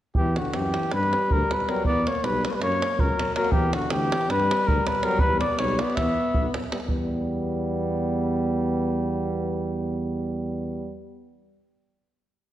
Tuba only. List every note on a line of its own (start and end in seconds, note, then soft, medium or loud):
0.16 0.38 E2 medium
0.55 0.76 F#2 medium
0.93 1.14 G2 medium
1.32 1.43 D2 medium
1.85 2.06 E2 medium
2.23 2.45 B1 medium
2.62 2.83 F#2 medium
2.99 3.10 C#2 medium
3.52 3.74 E2 medium
3.91 4.12 D2 medium
4.30 4.51 G2 medium
4.69 4.79 D2 medium
5.21 5.42 E2 medium
5.59 5.80 B1 medium
5.96 6.17 E2 medium
6.35 6.46 B1 medium
6.87 10.96 E2 medium